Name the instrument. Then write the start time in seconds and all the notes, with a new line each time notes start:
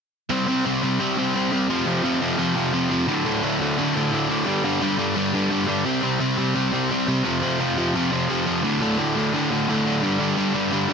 overdriven electric guitar
0.30 C3 G3 C4
0.47 C3 G3 C4
0.65 C3 G3 C4
0.82 C3 G3 C4
1.00 C3 G3 C4
1.17 C3 G3 C4
1.34 C3 G3 C4
1.51 C3 G3 C4
1.68 F2 C3 F3
1.86 F2 C3 F3
2.03 F2 C3 F3
2.21 F2 C3 F3
2.38 F2 C3 F3
2.55 F2 C3 F3
2.73 F2 C3 F3
2.90 F2 C3 F3
3.07 D2 A2 D3
3.25 D2 A2 D3
3.42 D2 A2 D3
3.60 D2 A2 D3
3.77 D2 A2 D3
3.95 D2 A2 D3
4.12 D2 A2 D3
4.29 D2 A2 D3
4.46 G2 D3 G3
4.64 G2 D3 G3
4.81 G2 D3 G3
4.98 G2 D3 G3
5.16 G2 D3 G3
5.34 G2 D3 G3
5.50 G2 D3 G3
5.67 G2 D3 G3
5.85 C3 G3 C4
6.02 C3 G3 C4
6.19 C3 G3 C4
6.37 C3 G3 C4
6.55 C3 G3 C4
6.72 C3 G3 C4
6.90 C3 G3 C4
7.07 C3 G3 C4
7.24 F2 C3 F3
7.42 F2 C3 F3
7.59 F2 C3 F3
7.76 F2 C3 F3
7.95 F2 C3 F3
8.12 F2 C3 F3
8.29 F2 C3 F3
8.46 F2 C3 F3
8.64 D2 A2 D3
8.81 D2 A2 D3
8.98 D2 A2 D3
9.15 D2 A2 D3
9.33 D2 A2 D3
9.51 D2 A2 D3
9.68 D2 A2 D3
9.85 D2 A2 D3
10.02 G2 D3 G3
10.20 G2 D3 G3
10.37 G2 D3 G3
10.54 G2 D3 G3
10.72 G2 D3 G3
10.88 G2 D3 G3